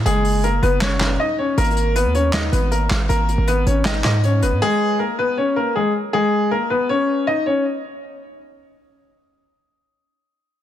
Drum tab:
HH |x--o--x--x--------------|xxxx--x--x--x--x--x--x--|x--x--x--x--x--x--x--x--|------------------------|
CP |------------x--x--------|------------x--------x--|------------x--x--------|------------------------|
SD |------------o--o--------|------------o--------o--|------------o--o--------|------------------------|

HH |------------------------|------------------------|------------------------|
CP |------------------------|------------------------|------------------------|
SD |------------------------|------------------------|------------------------|